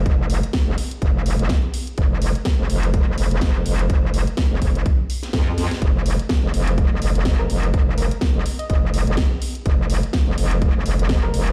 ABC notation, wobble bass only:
X:1
M:4/4
L:1/16
Q:"Swing 16ths" 1/4=125
K:Bbmix
V:1 name="Wobble bass" clef=bass
F,,,3 z2 F,,, z2 F,,,3 F,,, z4 | F,,,3 z2 F,,, F,,,3 F,,, F,,, F,,, F,,,2 F,,,2 | F,,,3 z2 F,,, F,,,2 z4 F,,3 z | F,,,3 z2 F,,, F,,,3 F,,, F,,, F,,, F,,,2 F,,,2 |
F,,,3 z2 F,,, z2 F,,,3 F,,, z4 | F,,,3 z2 F,,, F,,,3 F,,, F,,, F,,, F,,,2 F,,,2 |]